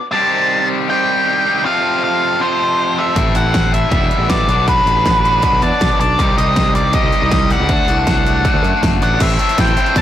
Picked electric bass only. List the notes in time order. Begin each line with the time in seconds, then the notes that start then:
3.16 A1
3.35 A1
3.91 E1
4.01 E1
4.18 A1
4.48 B1
4.86 A1
5.52 B1
5.62 E2
5.81 B1
6.00 B1
6.19 C2
6.38 C2
7.03 C2
7.22 C2
7.60 C#2
7.69 D2
7.88 C2
8.54 D2
8.64 F#2
8.83 F#1
9.02 A1
9.21 A1
9.58 A1
9.96 E2